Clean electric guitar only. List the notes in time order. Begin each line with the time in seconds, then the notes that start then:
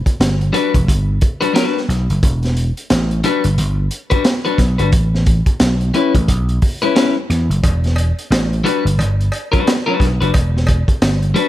0.53 G3 D4 F#4 B4
1.41 G3 D4 F#4 B4
1.54 G3 D4 F#4 B4
3.24 G3 D4 F#4 B4
4.10 G3 D4 F#4 B4
4.45 G3 D4 F#4 B4
4.78 G3 D4 F#4 B4
5.94 G3 C#4 E4 B4
6.82 G3 C#4 E4 B4
6.95 G3 C#4 E4 B4
8.64 G3 D4 F#4 B4
9.52 G3 D4 F#4 B4
9.86 G3 D4 F#4 B4
10.21 G3 D4 F#4 B4
11.34 G3 D4 F#4 B4